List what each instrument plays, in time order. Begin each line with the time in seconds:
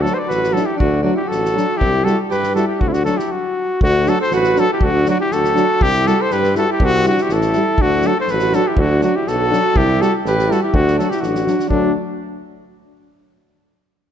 0.00 euphonium F#3, alto saxophone F#4, trumpet A4
0.05 trombone D4, snare
0.14 alto saxophone B4, trumpet C5 D5
0.26 alto saxophone F#4, trumpet B4, snare
0.30 tuba A1
0.43 snare
0.50 euphonium F#3, alto saxophone F#4, trumpet A4
0.55 trombone D4, snare
0.61 alto saxophone E4
0.66 trumpet G4
0.76 alto saxophone D4, trumpet F#4
0.80 tuba D2, kick
1.02 euphonium F#3, alto saxophone D4, trombone D4, trumpet F#4
1.14 alto saxophone E4, trumpet G4
1.23 alto saxophone F#4
1.29 tuba A1, trumpet A4, snare
1.45 snare
1.55 euphonium F#3, trombone D4, snare
1.77 alto saxophone E4, trumpet G4
1.81 tuba C2, kick
2.03 euphonium G3, trombone E4, alto saxophone F#4, trumpet A4, snare
2.30 tuba G2, alto saxophone G4, trumpet B4, snare
2.43 snare
2.54 euphonium G3, trombone E4, alto saxophone F#4, trumpet A4, snare
2.67 alto saxophone E4, trumpet G4
2.80 tuba D2, alto saxophone D4, trumpet F#4, kick
2.88 alto saxophone C4, trumpet E4
2.93 alto saxophone D4, trumpet F#4, snare
3.05 euphonium F#3, trombone D4, alto saxophone F#4, trumpet A4, snare
3.17 alto saxophone E4, trumpet G4, snare
3.32 trumpet F#4
3.81 tuba D2, alto saxophone D4, trumpet F#4, kick
4.06 euphonium F#3, trombone D4, alto saxophone F#4, trumpet A4, snare
4.19 alto saxophone A4, trumpet C5
4.31 tuba A1, alto saxophone F#4, snare
4.35 trumpet B4
4.44 snare
4.56 euphonium F#3, trombone D4, alto saxophone F#4, trumpet A4, snare
4.72 alto saxophone E4, trumpet G4
4.81 tuba D2, alto saxophone D4, trumpet F#4, kick
5.05 euphonium F#3, trombone D4, alto saxophone D4, snare
5.10 trumpet F#4
5.21 alto saxophone E4, trumpet G4
5.31 tuba D2, alto saxophone F#4, trumpet A4, snare
5.44 snare
5.55 euphonium F#3, trombone D4, snare
5.81 tuba C2, alto saxophone E4, trumpet G4, kick
6.05 euphonium G3, trombone E4, alto saxophone F#4, trumpet A4, snare
6.20 alto saxophone A4, trumpet C5
6.31 tuba G2, alto saxophone G4, trumpet B4, snare
6.43 snare
6.55 euphonium G3, trombone E4, alto saxophone F#4, trumpet A4, snare
6.69 alto saxophone E4, trumpet G4
6.80 tuba C2, alto saxophone C4, kick
6.84 trumpet F#4
7.04 euphonium G3, trombone E4, trumpet F#4, snare
7.08 alto saxophone D4
7.17 alto saxophone E4, snare
7.22 trumpet G4
7.29 tuba A1, trumpet A4, snare
7.33 alto saxophone E4
7.41 snare
7.53 euphonium G3, trombone E4, snare
7.78 tuba D2, alto saxophone D4, trumpet F#4, kick
8.01 euphonium F#3, trombone D4, snare
8.07 alto saxophone F#4, trumpet A4
8.18 alto saxophone A4, trumpet C5
8.27 tuba A1, alto saxophone F#4, trumpet B4, snare
8.39 snare
8.52 euphonium F#3, trombone D4, alto saxophone F#4, trumpet A4, snare
8.67 alto saxophone E4, trumpet G4
8.77 tuba D2, trumpet F#4, kick
8.82 alto saxophone D4
9.01 euphonium F#3, trombone D4, trumpet F#4, snare
9.06 alto saxophone D4
9.16 alto saxophone E4, trumpet G4
9.27 tuba B1, alto saxophone F#4, trumpet A4, snare
9.51 euphonium F#3, trombone D4, snare
9.75 tuba C2, alto saxophone E4, trumpet G4, kick
10.00 euphonium G3, trombone E4, alto saxophone F#4, trumpet A4, snare
10.25 tuba A1, alto saxophone G4, trumpet B4, snare
10.39 snare
10.48 euphonium G3, trombone E4, trumpet A4, snare
10.53 alto saxophone F#4
10.62 alto saxophone E4, trumpet G4
10.74 tuba D2, alto saxophone D4, trumpet F#4, kick
10.88 snare
10.97 euphonium F#3, trombone D4, alto saxophone F#4, trumpet A4, snare
11.10 trumpet G4, snare
11.14 alto saxophone E4
11.21 tuba A1, trumpet F#4, snare
11.26 alto saxophone D4
11.35 snare
11.45 euphonium F#3, trombone D4, snare
11.60 snare
11.68 tuba D2, euphonium F#3, alto saxophone A3, trumpet D4, trombone D4, kick